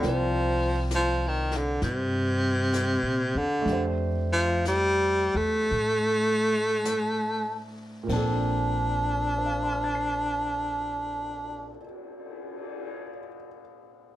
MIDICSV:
0, 0, Header, 1, 6, 480
1, 0, Start_track
1, 0, Key_signature, -2, "major"
1, 0, Tempo, 891530
1, 11, Time_signature, 4, 2, 24, 8
1, 972, Tempo, 934579
1, 1932, Tempo, 993377
1, 2412, Tempo, 1058201
1, 2892, Tempo, 1136364
1, 3372, Tempo, 1239669
1, 3852, Tempo, 1284797
1, 6115, End_track
2, 0, Start_track
2, 0, Title_t, "Grand piano"
2, 0, Program_c, 0, 0
2, 0, Control_c, 0, 64, 127
2, 5, Note_on_c, 0, 60, 51
2, 15, Note_on_c, 0, 65, 49
2, 19, Control_c, 0, 64, 0
2, 25, Note_on_c, 0, 70, 48
2, 33, Note_on_c, 0, 74, 53
2, 113, Control_c, 0, 64, 127
2, 1901, Note_on_c, 0, 57, 56
2, 1921, Note_on_c, 0, 62, 51
2, 1928, Note_off_c, 0, 60, 0
2, 1933, Note_off_c, 0, 65, 0
2, 1937, Note_off_c, 0, 70, 0
2, 1938, Control_c, 0, 64, 0
2, 1939, Note_on_c, 0, 67, 50
2, 1941, Note_off_c, 0, 74, 0
2, 1958, Note_on_c, 0, 72, 59
2, 2028, Control_c, 0, 64, 127
2, 3825, Note_on_c, 0, 46, 56
2, 3840, Note_off_c, 0, 57, 0
2, 3840, Note_on_c, 0, 58, 50
2, 3847, Note_off_c, 0, 62, 0
2, 3849, Note_on_c, 0, 60, 52
2, 3854, Note_off_c, 0, 67, 0
2, 3856, Control_c, 0, 64, 0
2, 3860, Note_on_c, 0, 62, 55
2, 3862, Note_off_c, 0, 72, 0
2, 3873, Note_on_c, 0, 69, 59
2, 3919, Control_c, 0, 64, 127
2, 4330, Note_on_c, 0, 72, 37
2, 4358, Note_on_c, 0, 77, 38
2, 4387, Note_on_c, 0, 81, 34
2, 4423, Note_on_c, 0, 84, 34
2, 4457, Note_on_c, 0, 89, 33
2, 4500, Note_on_c, 0, 93, 31
2, 4542, Note_on_c, 0, 96, 28
2, 5200, Note_off_c, 0, 46, 0
2, 5215, Note_off_c, 0, 58, 0
2, 5223, Note_off_c, 0, 60, 0
2, 5234, Note_off_c, 0, 62, 0
2, 5247, Note_off_c, 0, 69, 0
2, 5690, Note_off_c, 0, 72, 0
2, 5718, Note_off_c, 0, 77, 0
2, 5747, Note_off_c, 0, 81, 0
2, 5782, Note_off_c, 0, 84, 0
2, 5817, Note_off_c, 0, 89, 0
2, 5860, Note_off_c, 0, 93, 0
2, 5902, Note_off_c, 0, 96, 0
2, 6115, End_track
3, 0, Start_track
3, 0, Title_t, "Baritone saxophone"
3, 0, Program_c, 1, 67
3, 37, Note_on_c, 1, 53, 77
3, 479, Note_off_c, 1, 53, 0
3, 511, Note_on_c, 1, 53, 85
3, 689, Note_on_c, 1, 51, 73
3, 697, Note_off_c, 1, 53, 0
3, 847, Note_on_c, 1, 50, 69
3, 855, Note_off_c, 1, 51, 0
3, 985, Note_off_c, 1, 50, 0
3, 988, Note_on_c, 1, 48, 78
3, 1778, Note_on_c, 1, 50, 78
3, 1786, Note_off_c, 1, 48, 0
3, 2058, Note_off_c, 1, 50, 0
3, 2248, Note_on_c, 1, 53, 88
3, 2401, Note_off_c, 1, 53, 0
3, 2416, Note_on_c, 1, 55, 96
3, 2728, Note_on_c, 1, 57, 85
3, 2735, Note_off_c, 1, 55, 0
3, 3684, Note_off_c, 1, 57, 0
3, 3861, Note_on_c, 1, 62, 72
3, 5220, Note_off_c, 1, 62, 0
3, 6115, End_track
4, 0, Start_track
4, 0, Title_t, "Upright bass"
4, 0, Program_c, 2, 32
4, 22, Note_on_c, 2, 36, 76
4, 956, Note_off_c, 2, 36, 0
4, 979, Note_on_c, 2, 43, 77
4, 1588, Note_off_c, 2, 43, 0
4, 1599, Note_on_c, 2, 46, 57
4, 1753, Note_off_c, 2, 46, 0
4, 1764, Note_on_c, 2, 40, 63
4, 1918, Note_off_c, 2, 40, 0
4, 1921, Note_on_c, 2, 41, 79
4, 2702, Note_off_c, 2, 41, 0
4, 2719, Note_on_c, 2, 40, 61
4, 2877, Note_off_c, 2, 40, 0
4, 2887, Note_on_c, 2, 45, 79
4, 3834, Note_off_c, 2, 45, 0
4, 3847, Note_on_c, 2, 34, 75
4, 5206, Note_off_c, 2, 34, 0
4, 6115, End_track
5, 0, Start_track
5, 0, Title_t, "Cymbal swell"
5, 4167, Note_on_c, 9, 59, 38
5, 5667, Note_off_c, 9, 59, 0
5, 6115, End_track
6, 0, Start_track
6, 0, Title_t, "Drums"
6, 15, Note_on_c, 9, 25, 41
6, 15, Note_on_c, 9, 38, 28
6, 69, Note_off_c, 9, 38, 0
6, 488, Note_on_c, 9, 38, 40
6, 488, Note_on_c, 9, 44, 48
6, 542, Note_off_c, 9, 38, 0
6, 542, Note_off_c, 9, 44, 0
6, 815, Note_on_c, 9, 38, 26
6, 869, Note_off_c, 9, 38, 0
6, 977, Note_off_c, 9, 25, 0
6, 977, Note_on_c, 9, 25, 35
6, 977, Note_on_c, 9, 38, 30
6, 1029, Note_off_c, 9, 38, 0
6, 1448, Note_on_c, 9, 38, 43
6, 1448, Note_on_c, 9, 44, 51
6, 1500, Note_off_c, 9, 38, 0
6, 1500, Note_off_c, 9, 44, 0
6, 1933, Note_off_c, 9, 25, 0
6, 1933, Note_on_c, 9, 25, 36
6, 1933, Note_on_c, 9, 38, 28
6, 1981, Note_off_c, 9, 38, 0
6, 2404, Note_on_c, 9, 38, 40
6, 2404, Note_on_c, 9, 44, 41
6, 2450, Note_off_c, 9, 38, 0
6, 2450, Note_off_c, 9, 44, 0
6, 2887, Note_off_c, 9, 25, 0
6, 2887, Note_on_c, 9, 25, 39
6, 3367, Note_on_c, 9, 38, 44
6, 3367, Note_on_c, 9, 44, 56
6, 3406, Note_off_c, 9, 38, 0
6, 3406, Note_off_c, 9, 44, 0
6, 3845, Note_on_c, 9, 36, 45
6, 3848, Note_on_c, 9, 49, 57
6, 3883, Note_off_c, 9, 36, 0
6, 3886, Note_off_c, 9, 49, 0
6, 4234, Note_off_c, 9, 25, 0
6, 6115, End_track
0, 0, End_of_file